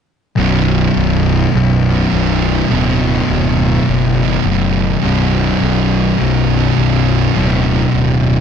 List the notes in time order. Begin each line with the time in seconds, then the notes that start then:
0.37 B0 B1 F#2
0.41 B2
0.96 B0
1.53 B0 B1 F#2 B2
1.91 B1 F#2 B2
2.11 B0 B1 F#2 B2
2.69 D1 B1 F#2
2.73 B2
3.30 D1
3.87 F#1 B1 F#2 B2
4.23 B1 F#2 B2
4.45 F#1 B1 F#2
4.49 B2
5.02 B0 B1 F#2
5.06 B2
5.62 B0
6.19 B0 B1 F#2 B2
6.56 B1 F#2 B2
6.77 B0 B1 F#2 B2
7.34 D1 B1 F#2 B2
7.94 D1